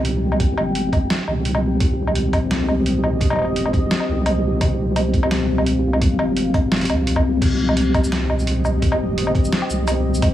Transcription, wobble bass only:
0.00 0.57 C2 loud
0.58 1.09 G1 loud
1.28 1.79 C2 medium
1.80 3.37 C2 loud
3.39 3.90 G1 loud
4.09 4.60 C2 medium
4.61 6.18 C2 loud
6.19 6.91 G1 loud
6.89 7.00 D#2 medium
6.99 7.41 C2 medium
7.42 8.99 C2 loud
9.00 9.51 G1 loud
9.70 10.22 C2 medium
10.23 10.34 C2 loud

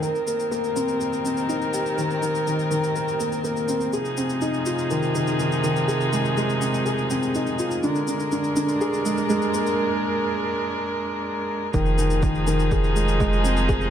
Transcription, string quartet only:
0.03 3.90 D#3 medium
0.03 3.90 C4 medium
0.03 3.90 A#4 medium
3.93 7.80 C3 medium
3.93 7.80 F3 medium
3.93 7.80 D#4 medium
3.93 7.80 G#4 medium
7.83 11.70 G#3 medium
7.83 11.70 D4 medium
7.83 11.70 A#4 medium
11.74 13.90 F3 medium
11.74 13.90 D#4 medium
11.74 13.90 G#4 medium

